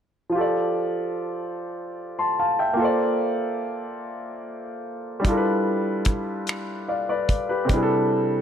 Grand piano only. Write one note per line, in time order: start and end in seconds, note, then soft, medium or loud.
0.30 2.73 F3 medium
0.30 2.74 F4 soft
0.35 2.76 G4 soft
0.35 2.77 A4 medium
0.41 2.79 D5 medium
2.19 2.38 A5 soft
2.19 2.38 C6 soft
2.39 2.59 F5 soft
2.39 2.59 A5 soft
2.59 2.98 E5 soft
2.59 2.98 G5 soft
2.74 5.18 A#3 medium
2.74 5.19 F4 medium
2.79 5.20 A4 medium
2.79 5.22 C5 medium
2.85 5.23 D5 medium
5.20 7.63 G3 medium
5.20 7.64 D4 medium
5.24 7.65 E4 medium
5.24 7.66 F4 medium
5.29 6.87 A4 medium
5.29 5.34 A#4 medium
5.37 6.91 B4 medium
6.88 7.08 D5 soft
6.88 7.08 F5 soft
7.09 7.48 B4 soft
7.09 7.48 D5 medium
7.49 7.89 G4 soft
7.49 7.88 B4 medium
7.65 8.41 C3 medium
7.65 8.41 G3 medium
7.71 8.41 D4 medium
7.71 8.41 E4 medium
7.76 7.79 G#4 medium
7.83 8.41 A4 medium